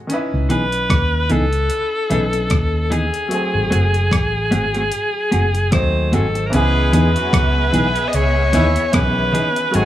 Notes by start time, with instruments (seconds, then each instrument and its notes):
Already playing: grand piano G#3 C4 G#4 A4
0.07 grand piano D#3 C#4 D#4, closed hi-hat
0.13 grand piano E4 B4
0.34 fingered electric bass C#2
0.49 fingered electric bass B1, clean electric guitar E3 B3 D#4 G#4, alto saxophone B4, closed hi-hat
0.72 closed hi-hat
0.90 fingered electric bass D#2, kick, cross-stick, closed hi-hat
1.30 fingered electric bass C#2, clean electric guitar E3 B3 D#4 G#4, alto saxophone A4, closed hi-hat
1.53 closed hi-hat
1.70 closed hi-hat
2.09 fingered electric bass B1, clean electric guitar E3 B3 D#4 G#4, grand piano C#4 D#4 E4 B4, closed hi-hat
2.33 closed hi-hat
2.50 fingered electric bass D#2, kick, cross-stick, closed hi-hat
2.90 clean electric guitar E3 B3 D#4 G#4, alto saxophone G#4, closed hi-hat
3.14 closed hi-hat
3.28 grand piano F#3 A3 C4, closed hi-hat
3.34 grand piano G#4
3.55 fingered electric bass G#1
3.70 fingered electric bass F#1, clean electric guitar A3 C4 F#4 G#4, closed hi-hat
3.94 closed hi-hat
4.12 fingered electric bass A1, kick, cross-stick, closed hi-hat
4.51 fingered electric bass G#1, clean electric guitar A3 C4 F#4 G#4, closed hi-hat
4.73 clean electric guitar A3 C4 F#4 G#4, closed hi-hat
4.92 closed hi-hat
5.31 fingered electric bass F#1, clean electric guitar A3 C4 F#4 G#4, closed hi-hat
5.54 muted clean electric guitar stroke, closed hi-hat
5.71 fingered electric bass D#2, grand piano F#3 A3 C4 D#4, alto saxophone C5, kick, cross-stick, closed hi-hat
6.12 fingered electric bass G#1, clean electric guitar A3 C4 F#4 G#4, alto saxophone A4, closed hi-hat
6.35 muted clean electric guitar stroke, closed hi-hat
6.47 grand piano E3, alto saxophone A#4
6.51 fingered electric bass C#2, horn section G#3 G#4, grand piano B3 C#4 E4, violin section B3 G#4 E5, alto saxophone B4, closed hi-hat
6.56 grand piano G#4
6.93 fingered electric bass E2, clean electric guitar E3 B3 D#4 G#4, alto saxophone B4, closed hi-hat
7.16 horn section F#3 F#4, closed hi-hat
7.33 fingered electric bass C#2, kick, cross-stick, closed hi-hat
7.73 fingered electric bass B1, clean electric guitar E3 B3 D#4 G#4, closed hi-hat
7.96 closed hi-hat
8.08 alto saxophone D#5
8.13 fingered electric bass C#2, horn section G#3 G#4, alto saxophone C#5, closed hi-hat
8.53 fingered electric bass D#2, clean electric guitar E3 B3 D#4 G#4, horn section E3 E4, closed hi-hat
8.76 closed hi-hat
8.92 fingered electric bass B1, grand piano D#3 E3 B3 C#4 G#4, alto saxophone B4, kick, cross-stick, closed hi-hat
9.33 clean electric guitar E3 B3 D#4 G#4, closed hi-hat
9.56 closed hi-hat
9.71 fingered electric bass G#1, grand piano F#3 A3 C4, horn section F#3 F#4, violin section D#4 C5 G#5, closed hi-hat
9.75 grand piano G#3 D#4, alto saxophone G#4